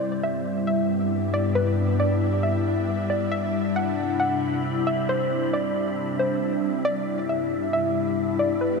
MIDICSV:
0, 0, Header, 1, 4, 480
1, 0, Start_track
1, 0, Key_signature, 1, "major"
1, 0, Tempo, 441176
1, 1693, Time_signature, 4, 2, 24, 8
1, 9574, End_track
2, 0, Start_track
2, 0, Title_t, "Synth pluck"
2, 0, Program_c, 0, 84
2, 0, Note_on_c, 0, 74, 101
2, 222, Note_off_c, 0, 74, 0
2, 256, Note_on_c, 0, 76, 82
2, 705, Note_off_c, 0, 76, 0
2, 732, Note_on_c, 0, 76, 78
2, 1409, Note_off_c, 0, 76, 0
2, 1454, Note_on_c, 0, 74, 88
2, 1681, Note_off_c, 0, 74, 0
2, 1689, Note_on_c, 0, 71, 91
2, 2142, Note_off_c, 0, 71, 0
2, 2172, Note_on_c, 0, 74, 84
2, 2624, Note_off_c, 0, 74, 0
2, 2645, Note_on_c, 0, 76, 77
2, 3326, Note_off_c, 0, 76, 0
2, 3371, Note_on_c, 0, 74, 77
2, 3600, Note_off_c, 0, 74, 0
2, 3607, Note_on_c, 0, 76, 91
2, 4061, Note_off_c, 0, 76, 0
2, 4092, Note_on_c, 0, 78, 85
2, 4543, Note_off_c, 0, 78, 0
2, 4566, Note_on_c, 0, 78, 87
2, 5246, Note_off_c, 0, 78, 0
2, 5297, Note_on_c, 0, 76, 84
2, 5523, Note_off_c, 0, 76, 0
2, 5539, Note_on_c, 0, 72, 91
2, 5987, Note_off_c, 0, 72, 0
2, 6022, Note_on_c, 0, 74, 94
2, 6694, Note_off_c, 0, 74, 0
2, 6739, Note_on_c, 0, 72, 69
2, 6964, Note_off_c, 0, 72, 0
2, 7452, Note_on_c, 0, 74, 104
2, 7904, Note_off_c, 0, 74, 0
2, 7935, Note_on_c, 0, 76, 84
2, 8385, Note_off_c, 0, 76, 0
2, 8413, Note_on_c, 0, 76, 82
2, 9090, Note_off_c, 0, 76, 0
2, 9131, Note_on_c, 0, 74, 85
2, 9360, Note_off_c, 0, 74, 0
2, 9369, Note_on_c, 0, 71, 90
2, 9574, Note_off_c, 0, 71, 0
2, 9574, End_track
3, 0, Start_track
3, 0, Title_t, "Synth texture"
3, 0, Program_c, 1, 99
3, 0, Note_on_c, 1, 59, 81
3, 0, Note_on_c, 1, 67, 74
3, 0, Note_on_c, 1, 76, 93
3, 3572, Note_off_c, 1, 59, 0
3, 3572, Note_off_c, 1, 67, 0
3, 3609, Note_on_c, 1, 83, 76
3, 3610, Note_on_c, 1, 60, 78
3, 7412, Note_off_c, 1, 83, 0
3, 7413, Note_off_c, 1, 60, 0
3, 7454, Note_on_c, 1, 67, 75
3, 7455, Note_on_c, 1, 59, 85
3, 9574, Note_off_c, 1, 59, 0
3, 9574, Note_off_c, 1, 67, 0
3, 9574, Note_off_c, 1, 76, 0
3, 9574, End_track
4, 0, Start_track
4, 0, Title_t, "Ambient pad"
4, 0, Program_c, 2, 92
4, 0, Note_on_c, 2, 43, 76
4, 0, Note_on_c, 2, 55, 73
4, 0, Note_on_c, 2, 62, 74
4, 0, Note_on_c, 2, 64, 88
4, 3574, Note_off_c, 2, 43, 0
4, 3574, Note_off_c, 2, 55, 0
4, 3613, Note_on_c, 2, 55, 71
4, 3614, Note_on_c, 2, 48, 77
4, 7415, Note_off_c, 2, 48, 0
4, 7453, Note_on_c, 2, 43, 81
4, 9574, Note_off_c, 2, 43, 0
4, 9574, Note_off_c, 2, 55, 0
4, 9574, Note_off_c, 2, 62, 0
4, 9574, Note_off_c, 2, 64, 0
4, 9574, End_track
0, 0, End_of_file